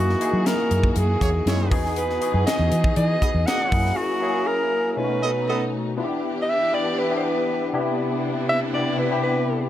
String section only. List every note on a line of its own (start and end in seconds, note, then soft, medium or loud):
0.00 1.69 E3 medium
0.00 1.69 A#3 medium
0.00 1.69 F#4 medium
1.71 3.70 E3 medium
1.71 3.70 D#4 medium
1.71 3.70 G#4 medium
3.73 4.96 F#3 medium
3.73 4.97 E4 medium
3.73 4.97 A#4 medium
4.98 5.97 A3 medium
4.98 5.97 B3 medium
4.98 5.97 D#4 medium
5.98 7.72 E3 medium
5.98 7.72 D4 medium
5.98 7.72 G4 medium
7.74 9.69 C3 medium
7.74 9.69 B3 medium
7.74 9.69 D4 medium
7.74 9.69 E4 medium